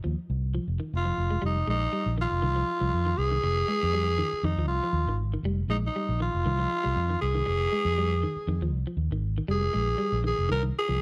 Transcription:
0.04 D#2 F3
0.30 C2
0.55 F3
0.68 F1
0.80 D#3
0.94 F1 F4
1.05 F3
1.18 F1
1.30 G#3
1.42 F1 G3
1.46 D#4
1.67 A#1 G#3 D#4
1.93 G3
2.06 A#1
2.18 D#3 F4
2.31 F1
2.42 C2 D#3
2.56 F3
2.81 C2 F3
2.94 F2
3.06 D#3
3.18 C2 G#4
3.31 D#3
3.43 F1, muted clean electric guitar stroke
3.68 G#3
3.83 F2
3.94 G3
4.18 D#3
4.33 muted fingered electric bass stroke
4.43 F2 D#3 D#4
4.57 D#2 F3
4.67 C2 F4
4.84 F3
4.93 D#2
5.06 G#1 D#3
5.34 D#3
5.43 F1 G3
5.68 A#1 G#3 D#4
5.87 D#4
5.96 G3
6.09 A#1
6.20 D#3 F4
6.34 F1
6.46 C2 D#3
6.59 F3
6.84 C2 G3
6.96 F2
7.10 D#3
7.21 C2 G#4
7.35 D#3
7.46 F1, muted clean electric guitar stroke
7.72 G#3
7.85 F2
7.98 G3
8.23 D#3
8.36 muted fingered electric bass stroke
8.48 F2 D#3
8.61 D#2 F3
8.73 C2
8.87 F3
8.97 D#2
9.10 G#1 D#3
9.38 D#3
9.48 F1 G3 G#4
9.74 A#1 G#3
9.98 G3
10.12 A#1
10.24 D#3 G#4
10.38 F1
10.49 C2 D#3 A#4
10.63 D#3
10.79 G#4
10.88 C2 F3

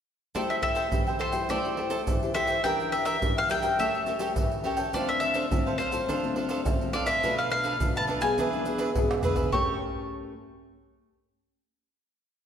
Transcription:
0.35 A3 E4 G4 A4 C5 D5 E5 G5, pandeiro, shaker, surdo
0.50 E5, pandeiro, shaker
0.62 A4 C5 E5 G5, pandeiro, surdo
0.75 A4 C5 E5 G5, pandeiro, shaker
0.92 E3 E4 G4 C5, pandeiro, shaker, surdo
1.07 C5 E5 G5, pandeiro, shaker
1.19 A4 C5 E5 G5, pandeiro
1.32 E4 G4 C5 E5 G5, pandeiro, shaker
1.49 A3 A4 C5 D5 E5 G5, pandeiro, shaker, surdo
1.65 E4 G4 C5, pandeiro, shaker
1.77 E4 G4 A4 C5 E5 G5, pandeiro
1.90 A4 C5 E5 G5, pandeiro, shaker
2.07 E3 E4 G4 C5, pandeiro, shaker, surdo
2.22 E4 G4 C5, pandeiro, shaker
2.34 E4 G4 A4 C5 E5 G5, pandeiro, shaker
2.47 C5 E5 G5, pandeiro, shaker
2.64 E3 D4 G4 A#4 E5 G5, pandeiro, shaker, surdo
2.80 pandeiro, shaker
2.92 D4 A#4 E5 G5, pandeiro, shaker
3.05 D4 A#4 E5 G5, pandeiro, shaker
3.22 E3 D4 G4 A#4, pandeiro, shaker, surdo
3.37 A#4 E5 F5 G5, pandeiro, shaker
3.49 D4 G4 A#4 E5 G5, pandeiro, shaker
3.62 C#4 G4 A#4 E5 G5, pandeiro, shaker
3.79 A3 G4 A4 C#5 E5 G5, pandeiro, shaker, surdo
3.94 pandeiro, shaker
4.06 C#4 G4 A4 A#4 C#5 G5, pandeiro, shaker
4.19 C#4 G4 A4 A#4 C#5 G5, pandeiro, shaker
4.36 E3, pandeiro, shaker, surdo
4.51 pandeiro, shaker
4.64 C#4 G4 A4 A#4 C#5 G5, pandeiro
4.77 A4 C#5 G5, pandeiro, shaker
4.94 D3 A3 C4 D4 F4 A4 C5 D5 F5, pandeiro, shaker, surdo
5.09 E5, pandeiro, shaker
5.20 D4 A4 C5 E5 F5, pandeiro, shaker
5.34 D4 A4 C5 F5, pandeiro, shaker
5.51 A2 A3 C4 F4, pandeiro, shaker, surdo
5.66 A4 C5 F5, pandeiro, shaker
5.78 D4 A4 C5 F5, pandeiro, shaker
5.92 A3 C4 F4 A4 C5 F5, pandeiro, shaker
6.08 D3 D4 A4 C5 F5, pandeiro, shaker, surdo
6.24 A3 C4 F4, pandeiro, shaker
6.36 A3 C4 D4 F4 A4 C5 F5, pandeiro
6.49 D4 A4 C5 F5, pandeiro, shaker
6.66 A2 A3 C4 F4, pandeiro, shaker, surdo
6.81 A3 C4 F4, pandeiro, shaker
6.93 A3 C4 D4 F4 A4 C5 D5 F5, pandeiro, shaker
7.06 A4 C5 E5 F5, pandeiro, shaker
7.23 B2 A3 D4 F4 A4 B4 F5, pandeiro, shaker, surdo
7.38 F5, pandeiro, shaker
7.50 D4 A4 B4 F5, pandeiro
7.64 D4 A4 B4 F5, pandeiro, shaker
7.80 B2 A3 D4 F4, pandeiro, shaker, surdo
7.96 A4 B4 F5 A5, pandeiro, shaker
8.08 D4 A4 B4 F5, pandeiro
8.21 B3 D4 G#4 A4 B4 F5 G#5, pandeiro, shaker
8.38 E3 D4 G#4 B4 E5, pandeiro, shaker, surdo
8.53 B3 D4 G#4, pandeiro, shaker
8.65 B3 D4 G#4 B4 E5, pandeiro, shaker
8.78 D4 G#4 B4 E5, pandeiro, shaker
8.95 B2 B3 D4 G#4, pandeiro, shaker, surdo
9.11 pandeiro, tamborim, shaker
9.23 B3 D4 G#4 B4 E5, surdo, pandeiro, shaker
9.35 G#4 B4 E5, pandeiro, shaker, surdo
9.52 A3 C#4 G4 A4 A#4 C#5 G5 C#6, surdo

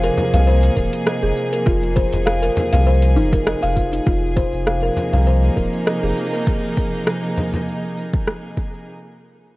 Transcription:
Already playing: C3 F3 A#3 D#4 G#4
0.03 A#4, closed hi-hat
0.17 frame drum, cabasa
0.33 C2 F5, closed hi-hat, frame drum, cabasa
0.47 C5, cabasa
0.63 closed hi-hat
0.76 D#1 A#4, kick, cabasa
0.93 closed hi-hat, cabasa
1.07 D#5, cross-stick, cabasa
1.23 F1 G#4
1.36 cabasa
1.53 A#4, closed hi-hat, cabasa
1.66 F1 F4, kick, cabasa
1.83 closed hi-hat
1.96 C5, kick, cabasa
2.13 F1, closed hi-hat, frame drum, cabasa
2.26 F5, cross-stick, cabasa
2.42 A#4, closed hi-hat
2.57 frame drum, cabasa
2.73 C2 F5, closed hi-hat, frame drum, cabasa
2.86 C5, cabasa
3.02 closed hi-hat
3.16 F1 D#4, cabasa
3.33 A#4, kick, closed hi-hat, cabasa
3.47 D#5, cross-stick, cabasa
3.63 F1 F5, closed hi-hat
3.76 F4, kick, cabasa
3.93 D#4, closed hi-hat, cabasa
4.07 F1 C3 F4, kick, cabasa
4.37 C5, kick, cabasa
4.43 A#3
4.53 F1, cabasa
4.65 F3 F5, cross-stick, cabasa
4.83 A#4
4.96 D#4, frame drum, cabasa
5.13 C2 F5, frame drum, cabasa
5.27 C5, cabasa
5.57 D#1 A#4, kick, cabasa
5.73 cabasa
5.87 D#5, cross-stick, cabasa
6.03 F1 G#4
6.17 cabasa
6.33 A#4, cabasa
6.47 kick, cabasa
6.77 kick, cabasa
6.93 cabasa
7.07 cross-stick, cabasa
7.37 frame drum, cabasa
7.53 frame drum, cabasa
7.67 cabasa
7.97 cabasa
8.13 kick
8.27 cross-stick, cabasa
8.57 kick, cabasa
8.73 cabasa

